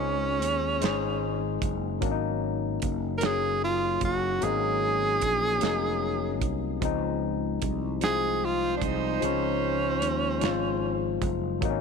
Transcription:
Already playing: fretless electric bass C#2, tine electric piano G#3 C4 D#4 G#4 C5, tenor saxophone C#4
0.42 fretless electric bass D#2, closed hi-hat
0.81 fretless electric bass G#1, tine electric piano G#3 D#4 C5, snare, closed hi-hat
0.85 tine electric piano G#4
1.62 fretless electric bass F#1, kick, closed hi-hat
2.01 fretless electric bass G#1, tine electric piano F#3 A#3 C#4, kick, closed hi-hat
2.05 tine electric piano D4
2.12 tine electric piano D#4
2.82 fretless electric bass F#1, kick, closed hi-hat
3.18 tine electric piano F#3, tenor saxophone A#4, closed hi-hat
3.22 tine electric piano A#3 C#4 G#4, tenor saxophone G#4, snare
3.64 tenor saxophone F4
4.01 fretless electric bass F#1, tenor saxophone F#4, kick, closed hi-hat
4.41 fretless electric bass G#1, tine electric piano F#3 A#3 C4, tenor saxophone G#4, closed hi-hat
4.45 tine electric piano D#4
4.50 tine electric piano C#4
5.21 fretless electric bass A#1, kick, closed hi-hat
5.61 fretless electric bass F1, tine electric piano F#3 A#3 C#4, snare, closed hi-hat
5.65 tine electric piano D#4
6.42 fretless electric bass C2, kick, closed hi-hat
6.81 fretless electric bass C#2, tine electric piano F3 G#3 C4, kick, closed hi-hat
6.85 tine electric piano D#4
7.62 fretless electric bass C2, kick, closed hi-hat
8.01 tine electric piano F3 G#3 C4, horn section G#3 F4 C5, tenor saxophone G#4, snare, closed hi-hat
8.05 tine electric piano F4
8.45 tenor saxophone F4
8.77 tenor saxophone D4
8.82 fretless electric bass C2, tenor saxophone D#4, kick, closed hi-hat
9.20 fretless electric bass C#2, tine electric piano F3 G#3 C5, closed hi-hat
9.25 tenor saxophone C#4, tine electric piano D#4
10.02 fretless electric bass D#2, closed hi-hat
10.41 fretless electric bass G#1, tine electric piano F3 G#3 F4 C5, snare, closed hi-hat
11.22 fretless electric bass F#1, kick, closed hi-hat
11.61 fretless electric bass G#1, tine electric piano F#3 A#3 C4, kick, closed hi-hat
11.65 tine electric piano D#4
11.70 tine electric piano C#4

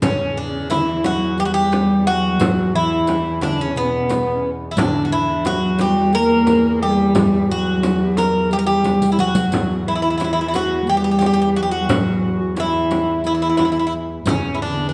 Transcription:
0.01 double bass E2, cello C#3, clarinet C#4, bouzouki C#4, riq, frame drum
0.11 clarinet D4
0.18 clarinet C#4
0.27 clarinet D4
0.33 clarinet C#4
0.37 bouzouki D4
0.42 clarinet D4
0.50 clarinet C#4
0.69 cello E3, clarinet E4, bouzouki E4, riq, frame drum
1.04 cello F#3, bouzouki F#4, riq, frame drum
1.38 cello G3, clarinet G4, bouzouki G4, riq
1.45 bouzouki F#4
1.52 cello G3, clarinet G4, bouzouki G4
1.72 riq, frame drum
1.99 clarinet G4
2.06 cello F#3, clarinet F#4, bouzouki F#4
2.40 riq, frame drum
2.75 cello E3, clarinet E4, bouzouki E4
3.07 riq, frame drum
3.26 clarinet E4
3.41 cello D3, bouzouki D4, riq, frame drum
3.59 cello C#3, clarinet C#4, bouzouki C#4
3.76 cello B2, clarinet B3, bouzouki B3, riq
3.85 clarinet C#4
3.92 clarinet B3
4.01 clarinet C#4
4.09 clarinet B3, riq, frame drum
4.36 clarinet C#4
4.71 bouzouki E4
4.77 double bass E2, cello D3, clarinet D4, bouzouki D4, riq, frame drum
5.05 bouzouki F#4
5.11 cello E3, bouzouki E4
5.45 cello F#3, clarinet F#4, bouzouki F#4, riq, frame drum
5.78 cello G3, bouzouki G4, riq, frame drum
6.13 cello A#3, clarinet A#4, bouzouki A#4, riq
6.47 riq, frame drum
6.81 cello G3, clarinet G4, bouzouki G4
7.15 riq, frame drum
7.32 clarinet G4
7.48 cello F#3, clarinet F#4, bouzouki F#4
7.83 riq, frame drum
8.00 clarinet G4
8.17 clarinet A#4, bouzouki A#4, riq, frame drum
8.51 cello G3, clarinet G4, bouzouki G4, riq
8.59 bouzouki A#4
8.65 cello G3, clarinet G4, bouzouki G4
8.84 riq, frame drum
9.02 riq
9.12 bouzouki E4
9.19 cello F#3, clarinet F#4, bouzouki F#4, riq
9.35 riq
9.52 double bass E2, riq, frame drum
9.80 clarinet F#4
9.86 cello E3, clarinet E4, bouzouki E4
9.95 bouzouki E4
10.02 bouzouki E4
10.10 bouzouki E4
10.18 bouzouki E4, riq, frame drum
10.24 bouzouki E4
10.33 bouzouki E4
10.41 bouzouki E4
10.48 bouzouki E4
10.53 clarinet F#4, bouzouki F#4, riq, frame drum
10.82 cello A#3
10.87 cello G3, clarinet G4, bouzouki G4, riq
10.97 bouzouki G4
11.04 bouzouki G4
11.11 bouzouki G4
11.19 bouzouki G4, riq, frame drum
11.26 bouzouki G4
11.34 bouzouki G4
11.42 bouzouki G4
11.56 cello F#3, bouzouki F#4
11.63 bouzouki G4
11.69 cello F#3, clarinet F#4, bouzouki F#4
11.89 riq, frame drum
12.40 clarinet F#4
12.56 cello E3, clarinet E4, bouzouki E4, riq, frame drum
12.91 riq, frame drum
13.24 cello E3, clarinet E4, bouzouki E4, riq
13.35 bouzouki E4
13.42 bouzouki E4
13.49 bouzouki E4
13.57 bouzouki E4, riq, frame drum
13.65 bouzouki E4
13.72 bouzouki E4
13.79 bouzouki E4
13.87 bouzouki E4
14.26 double bass E2, cello C#3, clarinet C#4, bouzouki C#4, riq, frame drum
14.54 bouzouki E4
14.59 cello D3, clarinet D4, bouzouki D4
14.67 clarinet C#4
14.77 clarinet B3
14.87 clarinet C#4, bouzouki D4

